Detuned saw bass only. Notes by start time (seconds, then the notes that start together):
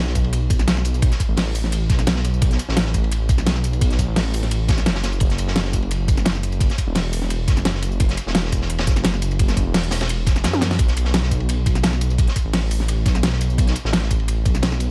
Already playing: B1
1.29 A1
1.90 B1
2.07 B1
2.69 A1
3.29 B1
4.08 A1
4.78 B1
4.86 F#1
5.21 F#1
6.87 E1
7.48 F#1
7.65 F#1
8.26 E1
8.87 F#1
9.66 E1
10.36 F#1
10.44 F#2
10.79 B1
12.45 A1
13.06 B1
13.23 B1
13.85 A1
14.45 B1